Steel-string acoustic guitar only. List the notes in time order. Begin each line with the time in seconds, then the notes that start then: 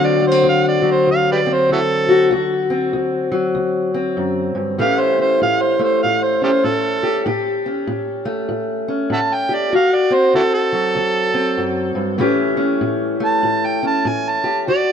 Already playing: D2 D3 F#3 C4 F#4
0.20 A3
0.32 C4
0.44 D2
0.82 F#3
1.06 D2
1.46 C4
1.69 D2
2.09 F#4
2.31 D2 F#4
2.70 C4
2.93 D2
3.32 F#3
3.55 D2
3.94 C4
4.17 F#2
4.55 G2
4.78 A2 E3 A3 C#4 G4
5.19 C#4
5.42 A2
5.79 A3
6.04 A2
6.42 C#4
6.64 A2
7.03 G4
7.26 A2 G4
7.66 C#4
7.87 A2
8.25 A3
8.49 A2
8.88 C#4
9.10 A2
9.49 G4
9.72 D2 F#4
10.10 C4
10.34 D2
10.72 F#3
10.95 D2
11.34 C4
11.57 F#2
11.95 G2
12.18 A2 E3 A3 C#4 G4
12.57 C#4
12.81 A2
13.20 A3
13.43 A2
13.83 C#4
14.05 A2
14.44 G4
14.67 D2 F#4